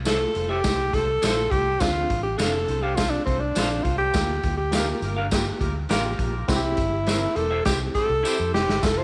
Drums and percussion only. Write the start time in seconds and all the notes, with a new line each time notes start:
0.05 snare, closed hi-hat, tambourine
0.35 closed hi-hat
0.64 kick, snare, closed hi-hat, tambourine
0.93 kick, snare, closed hi-hat
1.22 snare, closed hi-hat, tambourine
1.51 kick, closed hi-hat
1.80 kick, snare, closed hi-hat, tambourine
2.10 kick, closed hi-hat
2.39 snare, closed hi-hat, tambourine
2.68 closed hi-hat
2.97 kick, snare, closed hi-hat, tambourine
3.27 kick, closed hi-hat
3.55 snare, closed hi-hat, tambourine
3.85 kick, closed hi-hat
4.14 kick, snare, closed hi-hat, tambourine
4.43 kick, closed hi-hat
4.72 snare, closed hi-hat, tambourine
5.02 closed hi-hat
5.31 kick, snare, closed hi-hat, tambourine
5.61 kick, closed hi-hat
5.89 snare, closed hi-hat, tambourine
6.19 kick, closed hi-hat
6.48 kick, snare, closed hi-hat, tambourine
6.77 kick, closed hi-hat
7.07 snare, closed hi-hat, tambourine
7.36 closed hi-hat
7.65 kick, snare, closed hi-hat, tambourine
7.95 kick, snare, closed hi-hat
8.25 tambourine
8.54 snare
8.69 snare
8.83 kick, snare, closed hi-hat, tambourine